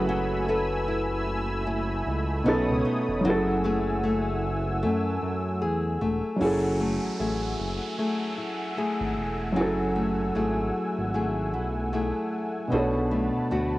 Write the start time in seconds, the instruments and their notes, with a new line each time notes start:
Already playing: analog synth bass F#1, felt piano F#3 C#4 E4 G#4 A4 B4 C#5, nylon-string guitar G#3 F#4, analog synth pad A3 G#5 B5 E6
0.09 nylon-string guitar F#3
0.48 nylon-string guitar E4 A4 B4
0.88 nylon-string guitar E4
1.67 nylon-string guitar E4
2.07 analog synth bass C#2
2.44 analog synth bass B1, felt piano B2 B3 C#4 D#4, nylon-string guitar B3, analog synth pad C#5 D#6
2.48 felt piano A4
2.69 analog synth bass C#2
2.85 nylon-string guitar D#4
3.08 analog synth bass E1
3.21 felt piano F#3 C#4, analog synth pad F#5 G#5
3.25 analog synth bass F#1, nylon-string guitar F#3, felt piano E4 G#4, analog synth pad E6
3.29 felt piano A4
3.64 nylon-string guitar A3 E4 G#4
4.03 nylon-string guitar A3
4.82 analog synth bass F#2, nylon-string guitar A3
5.22 analog synth bass F#2
5.62 analog synth bass E2, nylon-string guitar G#4
6.01 analog synth bass E1, nylon-string guitar A3
6.36 felt piano F#3 C#4
6.40 analog synth bass F#1, nylon-string guitar F#3 G#4, analog synth pad A3 F#5 G#5 E6, felt piano E4 G#4, downlifter
6.45 felt piano A4
6.80 nylon-string guitar A3
7.03 analog synth bass A1
7.19 analog synth bass A1, nylon-string guitar A3 E4 G#4
7.59 analog synth bass F#1
7.98 nylon-string guitar A3 E4 G#4
8.38 nylon-string guitar E4
8.77 nylon-string guitar A3 E4 G#4
9.01 analog synth bass G#1
9.17 analog synth bass E1
9.52 felt piano F#3 C#4, nylon-string guitar F#3
9.57 analog synth bass F#1, felt piano E4 G#4, nylon-string guitar G#4
9.61 felt piano A4
9.96 nylon-string guitar A3
10.35 analog synth bass G#1, nylon-string guitar A3 E4 G#4
10.98 analog synth bass G#1
11.14 nylon-string guitar A3 E4 G#4
11.54 analog synth bass B1, nylon-string guitar E4
11.93 nylon-string guitar A3 E4 G#4
12.68 felt piano B2 B3
12.72 analog synth bass B1, nylon-string guitar B2 F#4, felt piano D4 A4, analog synth pad A5 B5
12.77 felt piano C#5
13.11 nylon-string guitar A3
13.35 analog synth bass D2
13.51 analog synth bass D2, nylon-string guitar A3 D4 F#4